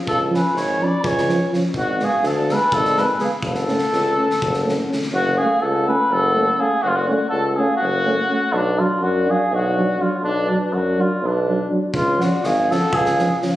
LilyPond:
<<
  \new Staff \with { instrumentName = "Bansuri" } { \time 7/8 \key fis \minor \tempo 4 = 124 eis''8 gis''8 gis''8 b''8 gis''4 r8 | d''8 eis''8 d''8 gis''8 d''8 gis''8 eis''8 | fis''2. r8 | cis''8 eis''8 fis''8 gis''8 fis''4 eis''8 |
cis''32 cis''32 d''16 d''8 fis''16. fis''32 eis''8 cis''4. | b'8 cis''8 d''8 eis''8 d''4 cis''8 | b'8 b'8 d''8 cis''8 b'8.~ b'32 r8 r32 | cis''8 d''8 eis''8 fis''8 eis''4 r8 | }
  \new Staff \with { instrumentName = "Cornet" } { \time 7/8 \key fis \minor a'8 b'8 cis''8 d''8 cis''4 r8 | fis'8 gis'8 a'8 b'8 a'8 b'8 gis'8 | a'2. r8 | fis'8 gis'8 a'8 b'8 a'4 gis'8 |
fis'32 eis'32 fis'16 fis'8 a'16. a'32 gis'8 fis'4. | d'8 eis'8 fis'8 gis'8 fis'4 eis'8 | d'8 d'8 fis'8 eis'8 d'8.~ d'32 r8 r32 | eis'8 fis'8 gis'8 a'8 gis'4 r8 | }
  \new Staff \with { instrumentName = "Euphonium" } { \time 7/8 \key fis \minor r8 cis'8 r8 cis'8 r8 cis'8 cis'8 | r8 b8 r8 b8 r8 b8 b8 | r8 cis'8 r8 cis'8 r8 cis'8 cis'8 | r8 cis'8 r8 cis'8 r8 cis'8 cis'8 |
r8 cis'8 r8 cis'8 r8 cis'8 cis'8 | r8 d'8 r8 d'8 r8 d'8 d'8 | r8 d'8 r8 d'8 r8 d'8 d'8 | r8 cis'8 r8 cis'8 r8 cis'8 cis'8 | }
  \new Staff \with { instrumentName = "Euphonium" } { \clef bass \time 7/8 \key fis \minor r8 eis8 r8 eis8 r8 eis8 eis8 | r8 gis8 r8 gis8 r8 gis8 gis8 | r8 a8 r8 a8 r8 a8 a8 | r8 a8 r8 a8 r8 a8 a8 |
r8 a8 r8 a8 r8 a8 a8 | r8 fis8 r8 fis8 r8 fis8 fis8 | r8 fis8 r8 fis8 r8 fis8 fis8 | r8 eis8 r8 eis8 r8 eis8 eis8 | }
  \new Staff \with { instrumentName = "Tuba" } { \clef bass \time 7/8 \key fis \minor cis,4 gis,,4 cis,4. | gis,,4 d,4 gis,,4. | fis,,4 cis,4 fis,,4. | fis,,4 cis,4 fis,,4. |
fis,,4 cis,4 fis,,4. | b,,4 fis,4 b,,4. | b,,4 fis,4 b,,4. | cis,4 gis,,4 cis,4. | }
  \new DrumStaff \with { instrumentName = "Drums" } \drummode { \time 7/8 bd8 sn8 sn4 bd16 sn16 sn8 sn8 | bd8 sn8 sn8 sn8 bd16 sn16 sn8 sn8 | bd16 sn16 sn16 sn16 sn8. sn16 bd16 sn16 sn8 sn16 sn16 | r4 r4 r4. |
r4 r4 r4. | r4 r4 r4. | r4 r4 r4. | bd8 sn8 sn8 sn8 bd16 sn16 sn8 sn8 | }
>>